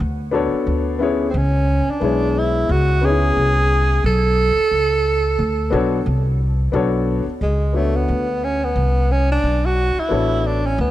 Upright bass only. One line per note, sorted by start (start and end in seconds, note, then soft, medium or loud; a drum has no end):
0.00 0.50 D2 medium
0.53 muted upright bass stroke soft
0.66 1.31 D2 medium
1.34 1.85 C#2 loud
2.01 2.65 B1 medium
2.69 3.33 C#2 medium
3.37 4.01 C2 medium
4.04 4.55 B1 loud
4.57 muted upright bass stroke soft
4.71 5.35 C#2 medium
5.39 5.71 D2 medium
5.72 6.04 B1 medium
6.06 6.70 C2 loud
6.73 7.24 B1 medium
7.27 muted upright bass stroke soft
7.41 8.05 C#2 medium
8.08 8.72 D2 medium
8.76 9.40 C2 medium
9.43 9.94 B1 medium
9.97 muted upright bass stroke soft
10.11 10.75 A1 medium
10.78 10.91 D2 medium